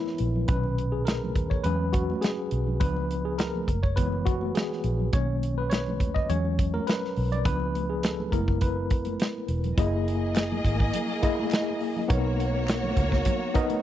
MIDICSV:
0, 0, Header, 1, 5, 480
1, 0, Start_track
1, 0, Tempo, 580833
1, 402, Time_signature, 4, 2, 24, 8
1, 11422, End_track
2, 0, Start_track
2, 0, Title_t, "String section"
2, 0, Program_c, 0, 48
2, 8081, Note_on_c, 0, 68, 80
2, 8082, Note_on_c, 0, 58, 82
2, 8082, Note_on_c, 0, 75, 94
2, 9969, Note_off_c, 0, 68, 0
2, 9970, Note_off_c, 0, 58, 0
2, 9970, Note_off_c, 0, 75, 0
2, 9995, Note_on_c, 0, 66, 81
2, 9998, Note_on_c, 0, 73, 98
2, 10000, Note_on_c, 0, 58, 89
2, 11422, Note_off_c, 0, 58, 0
2, 11422, Note_off_c, 0, 66, 0
2, 11422, Note_off_c, 0, 73, 0
2, 11422, End_track
3, 0, Start_track
3, 0, Title_t, "Tine electric piano"
3, 0, Program_c, 1, 4
3, 0, Control_c, 1, 64, 127
3, 0, Note_on_c, 1, 52, 52
3, 0, Note_on_c, 1, 56, 46
3, 0, Note_on_c, 1, 59, 57
3, 0, Note_on_c, 1, 64, 76
3, 0, Note_on_c, 1, 71, 85
3, 0, Note_on_c, 1, 73, 78
3, 263, Note_off_c, 1, 64, 0
3, 367, Note_off_c, 1, 52, 0
3, 370, Note_off_c, 1, 56, 0
3, 372, Note_off_c, 1, 59, 0
3, 397, Note_off_c, 1, 71, 0
3, 397, Note_on_c, 1, 71, 86
3, 405, Note_on_c, 1, 51, 49
3, 412, Note_on_c, 1, 46, 45
3, 413, Control_c, 1, 64, 0
3, 416, Note_off_c, 1, 73, 0
3, 417, Note_on_c, 1, 61, 55
3, 571, Control_c, 1, 64, 127
3, 730, Note_off_c, 1, 51, 0
3, 734, Note_off_c, 1, 46, 0
3, 736, Note_off_c, 1, 61, 0
3, 760, Note_on_c, 1, 68, 74
3, 780, Note_off_c, 1, 71, 0
3, 868, Note_off_c, 1, 68, 0
3, 871, Note_on_c, 1, 70, 83
3, 1240, Note_on_c, 1, 73, 80
3, 1257, Note_off_c, 1, 70, 0
3, 1292, Note_off_c, 1, 73, 0
3, 1352, Note_on_c, 1, 71, 93
3, 1358, Note_on_c, 1, 54, 52
3, 1368, Note_on_c, 1, 56, 49
3, 1369, Note_on_c, 1, 61, 60
3, 1372, Control_c, 1, 64, 0
3, 1499, Control_c, 1, 64, 127
3, 1592, Note_on_c, 1, 66, 84
3, 1604, Note_off_c, 1, 71, 0
3, 1686, Note_off_c, 1, 54, 0
3, 1691, Note_off_c, 1, 56, 0
3, 1692, Note_off_c, 1, 61, 0
3, 1829, Note_on_c, 1, 68, 86
3, 1844, Note_off_c, 1, 66, 0
3, 2179, Note_off_c, 1, 68, 0
3, 2314, Note_on_c, 1, 71, 92
3, 2317, Note_on_c, 1, 53, 50
3, 2326, Note_on_c, 1, 59, 45
3, 2330, Note_on_c, 1, 62, 55
3, 2332, Control_c, 1, 64, 0
3, 2501, Control_c, 1, 64, 127
3, 2661, Note_off_c, 1, 71, 0
3, 2686, Note_on_c, 1, 68, 79
3, 2796, Note_on_c, 1, 70, 87
3, 2802, Note_off_c, 1, 68, 0
3, 3006, Note_off_c, 1, 53, 0
3, 3011, Note_off_c, 1, 59, 0
3, 3013, Note_off_c, 1, 62, 0
3, 3053, Control_c, 1, 64, 0
3, 3163, Note_on_c, 1, 73, 82
3, 3179, Note_off_c, 1, 70, 0
3, 3210, Control_c, 1, 64, 127
3, 3273, Note_on_c, 1, 71, 93
3, 3277, Note_on_c, 1, 52, 54
3, 3281, Note_off_c, 1, 73, 0
3, 3281, Note_on_c, 1, 56, 48
3, 3288, Note_on_c, 1, 59, 59
3, 3383, Note_off_c, 1, 71, 0
3, 3516, Note_on_c, 1, 66, 92
3, 3758, Note_on_c, 1, 68, 86
3, 3766, Note_off_c, 1, 66, 0
3, 4103, Note_off_c, 1, 68, 0
3, 4206, Note_off_c, 1, 52, 0
3, 4208, Note_off_c, 1, 56, 0
3, 4212, Note_off_c, 1, 59, 0
3, 4241, Note_on_c, 1, 73, 99
3, 4246, Note_on_c, 1, 51, 51
3, 4250, Note_on_c, 1, 58, 47
3, 4253, Control_c, 1, 64, 0
3, 4256, Note_on_c, 1, 61, 58
3, 4375, Control_c, 1, 64, 127
3, 4571, Note_off_c, 1, 51, 0
3, 4573, Note_off_c, 1, 58, 0
3, 4576, Note_off_c, 1, 61, 0
3, 4585, Note_off_c, 1, 73, 0
3, 4609, Note_on_c, 1, 71, 85
3, 4659, Note_off_c, 1, 71, 0
3, 4708, Note_on_c, 1, 73, 92
3, 5078, Note_on_c, 1, 75, 92
3, 5096, Note_off_c, 1, 73, 0
3, 5187, Note_off_c, 1, 75, 0
3, 5202, Note_on_c, 1, 73, 99
3, 5206, Note_on_c, 1, 54, 57
3, 5207, Note_on_c, 1, 56, 50
3, 5211, Control_c, 1, 64, 0
3, 5213, Note_on_c, 1, 61, 60
3, 5380, Control_c, 1, 64, 127
3, 5568, Note_on_c, 1, 70, 86
3, 5583, Note_off_c, 1, 73, 0
3, 5677, Note_on_c, 1, 71, 91
3, 5684, Note_off_c, 1, 70, 0
3, 5891, Note_off_c, 1, 54, 0
3, 5892, Note_off_c, 1, 56, 0
3, 5895, Note_off_c, 1, 61, 0
3, 6050, Note_on_c, 1, 74, 89
3, 6060, Note_off_c, 1, 71, 0
3, 6164, Note_on_c, 1, 71, 97
3, 6165, Note_off_c, 1, 74, 0
3, 6165, Note_on_c, 1, 53, 50
3, 6169, Note_on_c, 1, 59, 46
3, 6174, Control_c, 1, 64, 0
3, 6175, Note_on_c, 1, 62, 55
3, 6325, Control_c, 1, 64, 127
3, 6525, Note_on_c, 1, 68, 76
3, 6544, Note_off_c, 1, 71, 0
3, 6576, Note_off_c, 1, 68, 0
3, 6644, Note_on_c, 1, 69, 80
3, 6851, Note_off_c, 1, 53, 0
3, 6853, Note_off_c, 1, 59, 0
3, 6856, Note_off_c, 1, 62, 0
3, 6877, Note_on_c, 1, 70, 83
3, 6879, Note_on_c, 1, 56, 50
3, 6881, Note_on_c, 1, 59, 48
3, 6889, Note_on_c, 1, 64, 58
3, 6891, Note_off_c, 1, 69, 0
3, 6894, Control_c, 1, 64, 0
3, 7052, Control_c, 1, 64, 127
3, 7103, Note_off_c, 1, 70, 0
3, 7119, Note_on_c, 1, 71, 88
3, 7208, Note_off_c, 1, 56, 0
3, 7209, Note_off_c, 1, 59, 0
3, 7213, Note_off_c, 1, 64, 0
3, 7808, Note_off_c, 1, 71, 0
3, 8082, Note_on_c, 1, 58, 77
3, 8083, Note_on_c, 1, 64, 75
3, 8092, Note_on_c, 1, 68, 73
3, 8095, Control_c, 1, 64, 0
3, 8095, Note_on_c, 1, 75, 88
3, 8242, Control_c, 1, 64, 127
3, 8864, Note_off_c, 1, 58, 0
3, 8865, Note_off_c, 1, 64, 0
3, 8869, Note_off_c, 1, 68, 0
3, 8871, Note_off_c, 1, 75, 0
3, 9277, Note_on_c, 1, 58, 88
3, 9281, Note_on_c, 1, 64, 82
3, 9286, Note_on_c, 1, 68, 84
3, 9292, Note_on_c, 1, 75, 98
3, 9871, Note_off_c, 1, 58, 0
3, 9873, Note_off_c, 1, 64, 0
3, 9875, Note_off_c, 1, 68, 0
3, 9878, Note_off_c, 1, 75, 0
3, 9985, Note_on_c, 1, 59, 84
3, 9991, Note_on_c, 1, 63, 75
3, 9995, Note_on_c, 1, 70, 78
3, 10000, Note_on_c, 1, 73, 89
3, 10013, Control_c, 1, 64, 0
3, 10157, Control_c, 1, 64, 127
3, 10776, Note_off_c, 1, 59, 0
3, 10779, Note_off_c, 1, 63, 0
3, 10781, Note_off_c, 1, 70, 0
3, 10783, Note_off_c, 1, 73, 0
3, 11191, Note_on_c, 1, 59, 92
3, 11192, Note_on_c, 1, 63, 86
3, 11199, Note_on_c, 1, 70, 83
3, 11203, Note_on_c, 1, 75, 106
3, 11422, Note_off_c, 1, 59, 0
3, 11422, Note_off_c, 1, 63, 0
3, 11422, Note_off_c, 1, 70, 0
3, 11422, Note_off_c, 1, 75, 0
3, 11422, End_track
4, 0, Start_track
4, 0, Title_t, "Fingered electric bass"
4, 0, Program_c, 2, 33
4, 168, Note_on_c, 2, 34, 91
4, 367, Note_off_c, 2, 34, 0
4, 404, Note_on_c, 2, 35, 103
4, 1119, Note_off_c, 2, 35, 0
4, 1119, Note_on_c, 2, 39, 81
4, 1322, Note_off_c, 2, 39, 0
4, 1359, Note_on_c, 2, 40, 90
4, 1763, Note_off_c, 2, 40, 0
4, 2083, Note_on_c, 2, 35, 84
4, 2322, Note_off_c, 2, 35, 0
4, 2322, Note_on_c, 2, 37, 94
4, 3009, Note_off_c, 2, 37, 0
4, 3044, Note_on_c, 2, 30, 93
4, 3730, Note_off_c, 2, 30, 0
4, 4002, Note_on_c, 2, 34, 89
4, 4203, Note_off_c, 2, 34, 0
4, 4244, Note_on_c, 2, 35, 99
4, 4961, Note_off_c, 2, 35, 0
4, 4961, Note_on_c, 2, 39, 88
4, 5163, Note_off_c, 2, 39, 0
4, 5203, Note_on_c, 2, 40, 93
4, 5606, Note_off_c, 2, 40, 0
4, 5929, Note_on_c, 2, 35, 80
4, 6161, Note_off_c, 2, 35, 0
4, 6161, Note_on_c, 2, 37, 94
4, 6849, Note_off_c, 2, 37, 0
4, 6880, Note_on_c, 2, 30, 86
4, 7569, Note_off_c, 2, 30, 0
4, 7838, Note_on_c, 2, 28, 83
4, 8042, Note_off_c, 2, 28, 0
4, 8082, Note_on_c, 2, 30, 98
4, 8770, Note_off_c, 2, 30, 0
4, 8799, Note_on_c, 2, 32, 82
4, 9002, Note_off_c, 2, 32, 0
4, 10002, Note_on_c, 2, 35, 97
4, 10690, Note_off_c, 2, 35, 0
4, 10717, Note_on_c, 2, 37, 92
4, 10921, Note_off_c, 2, 37, 0
4, 11422, End_track
5, 0, Start_track
5, 0, Title_t, "Drums"
5, 57, Note_on_c, 9, 38, 29
5, 61, Note_on_c, 9, 62, 31
5, 140, Note_off_c, 9, 38, 0
5, 144, Note_off_c, 9, 62, 0
5, 151, Note_on_c, 9, 42, 68
5, 234, Note_off_c, 9, 42, 0
5, 296, Note_on_c, 9, 64, 57
5, 379, Note_off_c, 9, 64, 0
5, 396, Note_on_c, 9, 42, 89
5, 402, Note_on_c, 9, 36, 111
5, 479, Note_off_c, 9, 42, 0
5, 484, Note_off_c, 9, 36, 0
5, 525, Note_on_c, 9, 62, 32
5, 607, Note_off_c, 9, 62, 0
5, 648, Note_on_c, 9, 42, 71
5, 731, Note_off_c, 9, 42, 0
5, 883, Note_on_c, 9, 42, 83
5, 886, Note_on_c, 9, 62, 28
5, 894, Note_on_c, 9, 38, 109
5, 966, Note_off_c, 9, 42, 0
5, 969, Note_off_c, 9, 62, 0
5, 977, Note_off_c, 9, 38, 0
5, 1024, Note_on_c, 9, 63, 60
5, 1024, Note_on_c, 9, 64, 60
5, 1106, Note_off_c, 9, 63, 0
5, 1106, Note_off_c, 9, 64, 0
5, 1120, Note_on_c, 9, 36, 84
5, 1122, Note_on_c, 9, 42, 62
5, 1133, Note_on_c, 9, 63, 60
5, 1202, Note_off_c, 9, 36, 0
5, 1205, Note_off_c, 9, 42, 0
5, 1216, Note_off_c, 9, 63, 0
5, 1249, Note_on_c, 9, 36, 80
5, 1331, Note_off_c, 9, 36, 0
5, 1356, Note_on_c, 9, 42, 98
5, 1359, Note_on_c, 9, 62, 32
5, 1438, Note_off_c, 9, 42, 0
5, 1442, Note_off_c, 9, 62, 0
5, 1597, Note_on_c, 9, 42, 71
5, 1603, Note_on_c, 9, 36, 90
5, 1680, Note_off_c, 9, 42, 0
5, 1686, Note_off_c, 9, 36, 0
5, 1734, Note_on_c, 9, 63, 79
5, 1817, Note_off_c, 9, 63, 0
5, 1837, Note_on_c, 9, 42, 81
5, 1847, Note_on_c, 9, 62, 28
5, 1854, Note_on_c, 9, 38, 110
5, 1920, Note_off_c, 9, 42, 0
5, 1930, Note_off_c, 9, 62, 0
5, 1937, Note_off_c, 9, 38, 0
5, 2076, Note_on_c, 9, 42, 68
5, 2158, Note_off_c, 9, 42, 0
5, 2208, Note_on_c, 9, 64, 62
5, 2290, Note_off_c, 9, 64, 0
5, 2319, Note_on_c, 9, 42, 87
5, 2321, Note_on_c, 9, 36, 109
5, 2401, Note_off_c, 9, 42, 0
5, 2404, Note_off_c, 9, 36, 0
5, 2450, Note_on_c, 9, 62, 33
5, 2532, Note_off_c, 9, 62, 0
5, 2568, Note_on_c, 9, 42, 66
5, 2650, Note_off_c, 9, 42, 0
5, 2798, Note_on_c, 9, 42, 84
5, 2806, Note_on_c, 9, 62, 29
5, 2809, Note_on_c, 9, 38, 101
5, 2881, Note_off_c, 9, 42, 0
5, 2889, Note_off_c, 9, 62, 0
5, 2892, Note_off_c, 9, 38, 0
5, 2938, Note_on_c, 9, 62, 27
5, 2938, Note_on_c, 9, 63, 64
5, 2938, Note_on_c, 9, 64, 62
5, 3021, Note_off_c, 9, 62, 0
5, 3021, Note_off_c, 9, 63, 0
5, 3021, Note_off_c, 9, 64, 0
5, 3040, Note_on_c, 9, 36, 78
5, 3045, Note_on_c, 9, 42, 66
5, 3049, Note_on_c, 9, 63, 60
5, 3123, Note_off_c, 9, 36, 0
5, 3127, Note_off_c, 9, 42, 0
5, 3131, Note_off_c, 9, 63, 0
5, 3168, Note_on_c, 9, 36, 79
5, 3251, Note_off_c, 9, 36, 0
5, 3279, Note_on_c, 9, 62, 33
5, 3280, Note_on_c, 9, 42, 99
5, 3284, Note_on_c, 9, 36, 82
5, 3361, Note_off_c, 9, 62, 0
5, 3363, Note_off_c, 9, 42, 0
5, 3367, Note_off_c, 9, 36, 0
5, 3409, Note_on_c, 9, 62, 30
5, 3491, Note_off_c, 9, 62, 0
5, 3524, Note_on_c, 9, 42, 69
5, 3525, Note_on_c, 9, 36, 85
5, 3607, Note_off_c, 9, 42, 0
5, 3608, Note_off_c, 9, 36, 0
5, 3646, Note_on_c, 9, 63, 75
5, 3729, Note_off_c, 9, 63, 0
5, 3761, Note_on_c, 9, 42, 80
5, 3779, Note_on_c, 9, 38, 106
5, 3844, Note_off_c, 9, 42, 0
5, 3861, Note_off_c, 9, 38, 0
5, 3896, Note_on_c, 9, 62, 31
5, 3906, Note_on_c, 9, 38, 29
5, 3979, Note_off_c, 9, 62, 0
5, 3988, Note_off_c, 9, 38, 0
5, 3998, Note_on_c, 9, 42, 68
5, 4081, Note_off_c, 9, 42, 0
5, 4131, Note_on_c, 9, 64, 60
5, 4213, Note_off_c, 9, 64, 0
5, 4234, Note_on_c, 9, 62, 30
5, 4238, Note_on_c, 9, 42, 89
5, 4241, Note_on_c, 9, 36, 118
5, 4317, Note_off_c, 9, 62, 0
5, 4320, Note_off_c, 9, 42, 0
5, 4324, Note_off_c, 9, 36, 0
5, 4488, Note_on_c, 9, 42, 67
5, 4571, Note_off_c, 9, 42, 0
5, 4721, Note_on_c, 9, 42, 84
5, 4732, Note_on_c, 9, 38, 104
5, 4736, Note_on_c, 9, 62, 28
5, 4804, Note_off_c, 9, 42, 0
5, 4815, Note_off_c, 9, 38, 0
5, 4819, Note_off_c, 9, 62, 0
5, 4861, Note_on_c, 9, 62, 27
5, 4861, Note_on_c, 9, 63, 64
5, 4861, Note_on_c, 9, 64, 63
5, 4943, Note_off_c, 9, 62, 0
5, 4943, Note_off_c, 9, 63, 0
5, 4943, Note_off_c, 9, 64, 0
5, 4959, Note_on_c, 9, 36, 83
5, 4964, Note_on_c, 9, 42, 65
5, 4969, Note_on_c, 9, 63, 61
5, 5042, Note_off_c, 9, 36, 0
5, 5047, Note_off_c, 9, 42, 0
5, 5052, Note_off_c, 9, 63, 0
5, 5089, Note_on_c, 9, 36, 78
5, 5172, Note_off_c, 9, 36, 0
5, 5198, Note_on_c, 9, 62, 31
5, 5203, Note_on_c, 9, 42, 100
5, 5281, Note_off_c, 9, 62, 0
5, 5286, Note_off_c, 9, 42, 0
5, 5329, Note_on_c, 9, 62, 30
5, 5412, Note_off_c, 9, 62, 0
5, 5445, Note_on_c, 9, 36, 94
5, 5446, Note_on_c, 9, 42, 73
5, 5527, Note_off_c, 9, 36, 0
5, 5529, Note_off_c, 9, 42, 0
5, 5569, Note_on_c, 9, 63, 78
5, 5652, Note_off_c, 9, 63, 0
5, 5674, Note_on_c, 9, 62, 29
5, 5680, Note_on_c, 9, 42, 80
5, 5698, Note_on_c, 9, 38, 106
5, 5757, Note_off_c, 9, 62, 0
5, 5763, Note_off_c, 9, 42, 0
5, 5780, Note_off_c, 9, 38, 0
5, 5824, Note_on_c, 9, 38, 31
5, 5907, Note_off_c, 9, 38, 0
5, 5920, Note_on_c, 9, 46, 51
5, 6003, Note_off_c, 9, 46, 0
5, 6050, Note_on_c, 9, 64, 65
5, 6053, Note_on_c, 9, 42, 50
5, 6133, Note_off_c, 9, 64, 0
5, 6135, Note_off_c, 9, 42, 0
5, 6147, Note_on_c, 9, 62, 31
5, 6159, Note_on_c, 9, 36, 113
5, 6159, Note_on_c, 9, 42, 91
5, 6229, Note_off_c, 9, 62, 0
5, 6241, Note_off_c, 9, 42, 0
5, 6242, Note_off_c, 9, 36, 0
5, 6279, Note_on_c, 9, 62, 34
5, 6362, Note_off_c, 9, 62, 0
5, 6404, Note_on_c, 9, 63, 47
5, 6407, Note_on_c, 9, 42, 67
5, 6487, Note_off_c, 9, 63, 0
5, 6490, Note_off_c, 9, 42, 0
5, 6638, Note_on_c, 9, 42, 87
5, 6649, Note_on_c, 9, 38, 109
5, 6721, Note_off_c, 9, 42, 0
5, 6732, Note_off_c, 9, 38, 0
5, 6776, Note_on_c, 9, 63, 63
5, 6776, Note_on_c, 9, 64, 60
5, 6859, Note_off_c, 9, 63, 0
5, 6859, Note_off_c, 9, 64, 0
5, 6878, Note_on_c, 9, 36, 79
5, 6884, Note_on_c, 9, 42, 68
5, 6888, Note_on_c, 9, 63, 60
5, 6960, Note_off_c, 9, 36, 0
5, 6966, Note_off_c, 9, 42, 0
5, 6970, Note_off_c, 9, 63, 0
5, 7007, Note_on_c, 9, 36, 81
5, 7090, Note_off_c, 9, 36, 0
5, 7115, Note_on_c, 9, 42, 102
5, 7121, Note_on_c, 9, 36, 82
5, 7198, Note_off_c, 9, 42, 0
5, 7204, Note_off_c, 9, 36, 0
5, 7358, Note_on_c, 9, 42, 71
5, 7362, Note_on_c, 9, 36, 92
5, 7441, Note_off_c, 9, 42, 0
5, 7445, Note_off_c, 9, 36, 0
5, 7478, Note_on_c, 9, 42, 51
5, 7494, Note_on_c, 9, 63, 75
5, 7561, Note_off_c, 9, 42, 0
5, 7576, Note_off_c, 9, 63, 0
5, 7600, Note_on_c, 9, 42, 80
5, 7618, Note_on_c, 9, 38, 105
5, 7683, Note_off_c, 9, 42, 0
5, 7700, Note_off_c, 9, 38, 0
5, 7751, Note_on_c, 9, 62, 33
5, 7833, Note_off_c, 9, 62, 0
5, 7838, Note_on_c, 9, 42, 68
5, 7920, Note_off_c, 9, 42, 0
5, 7966, Note_on_c, 9, 42, 49
5, 7974, Note_on_c, 9, 64, 63
5, 8049, Note_off_c, 9, 42, 0
5, 8057, Note_off_c, 9, 64, 0
5, 8079, Note_on_c, 9, 36, 120
5, 8079, Note_on_c, 9, 42, 90
5, 8161, Note_off_c, 9, 42, 0
5, 8162, Note_off_c, 9, 36, 0
5, 8330, Note_on_c, 9, 42, 71
5, 8412, Note_off_c, 9, 42, 0
5, 8558, Note_on_c, 9, 42, 84
5, 8560, Note_on_c, 9, 39, 76
5, 8569, Note_on_c, 9, 38, 111
5, 8571, Note_on_c, 9, 62, 30
5, 8640, Note_off_c, 9, 42, 0
5, 8642, Note_off_c, 9, 39, 0
5, 8651, Note_off_c, 9, 38, 0
5, 8653, Note_off_c, 9, 62, 0
5, 8694, Note_on_c, 9, 62, 29
5, 8694, Note_on_c, 9, 63, 64
5, 8694, Note_on_c, 9, 64, 63
5, 8776, Note_off_c, 9, 62, 0
5, 8776, Note_off_c, 9, 63, 0
5, 8776, Note_off_c, 9, 64, 0
5, 8797, Note_on_c, 9, 36, 79
5, 8805, Note_on_c, 9, 42, 70
5, 8810, Note_on_c, 9, 63, 67
5, 8880, Note_off_c, 9, 36, 0
5, 8887, Note_off_c, 9, 42, 0
5, 8893, Note_off_c, 9, 63, 0
5, 8926, Note_on_c, 9, 36, 85
5, 9009, Note_off_c, 9, 36, 0
5, 9037, Note_on_c, 9, 42, 102
5, 9044, Note_on_c, 9, 62, 34
5, 9044, Note_on_c, 9, 64, 75
5, 9120, Note_off_c, 9, 42, 0
5, 9126, Note_off_c, 9, 62, 0
5, 9126, Note_off_c, 9, 64, 0
5, 9279, Note_on_c, 9, 42, 71
5, 9281, Note_on_c, 9, 36, 87
5, 9362, Note_off_c, 9, 42, 0
5, 9364, Note_off_c, 9, 36, 0
5, 9416, Note_on_c, 9, 63, 81
5, 9498, Note_off_c, 9, 63, 0
5, 9511, Note_on_c, 9, 39, 72
5, 9515, Note_on_c, 9, 42, 88
5, 9532, Note_on_c, 9, 38, 112
5, 9594, Note_off_c, 9, 39, 0
5, 9598, Note_off_c, 9, 42, 0
5, 9615, Note_off_c, 9, 38, 0
5, 9658, Note_on_c, 9, 62, 34
5, 9740, Note_off_c, 9, 62, 0
5, 9757, Note_on_c, 9, 46, 52
5, 9840, Note_off_c, 9, 46, 0
5, 9887, Note_on_c, 9, 64, 60
5, 9970, Note_off_c, 9, 64, 0
5, 9991, Note_on_c, 9, 62, 32
5, 9999, Note_on_c, 9, 42, 96
5, 10000, Note_on_c, 9, 36, 115
5, 10074, Note_off_c, 9, 62, 0
5, 10082, Note_off_c, 9, 42, 0
5, 10083, Note_off_c, 9, 36, 0
5, 10248, Note_on_c, 9, 42, 72
5, 10331, Note_off_c, 9, 42, 0
5, 10477, Note_on_c, 9, 39, 73
5, 10481, Note_on_c, 9, 42, 91
5, 10492, Note_on_c, 9, 38, 113
5, 10560, Note_off_c, 9, 39, 0
5, 10564, Note_off_c, 9, 42, 0
5, 10575, Note_off_c, 9, 38, 0
5, 10610, Note_on_c, 9, 62, 28
5, 10610, Note_on_c, 9, 63, 67
5, 10610, Note_on_c, 9, 64, 66
5, 10692, Note_off_c, 9, 62, 0
5, 10692, Note_off_c, 9, 63, 0
5, 10692, Note_off_c, 9, 64, 0
5, 10715, Note_on_c, 9, 36, 84
5, 10717, Note_on_c, 9, 42, 68
5, 10728, Note_on_c, 9, 63, 66
5, 10798, Note_off_c, 9, 36, 0
5, 10800, Note_off_c, 9, 42, 0
5, 10810, Note_off_c, 9, 63, 0
5, 10843, Note_on_c, 9, 36, 81
5, 10853, Note_on_c, 9, 38, 35
5, 10926, Note_off_c, 9, 36, 0
5, 10935, Note_off_c, 9, 38, 0
5, 10951, Note_on_c, 9, 42, 104
5, 10955, Note_on_c, 9, 62, 35
5, 10955, Note_on_c, 9, 64, 79
5, 10957, Note_on_c, 9, 36, 89
5, 11033, Note_off_c, 9, 42, 0
5, 11038, Note_off_c, 9, 62, 0
5, 11038, Note_off_c, 9, 64, 0
5, 11040, Note_off_c, 9, 36, 0
5, 11195, Note_on_c, 9, 42, 77
5, 11200, Note_on_c, 9, 36, 98
5, 11278, Note_off_c, 9, 42, 0
5, 11282, Note_off_c, 9, 36, 0
5, 11320, Note_on_c, 9, 42, 54
5, 11324, Note_on_c, 9, 63, 78
5, 11403, Note_off_c, 9, 42, 0
5, 11407, Note_off_c, 9, 63, 0
5, 11422, End_track
0, 0, End_of_file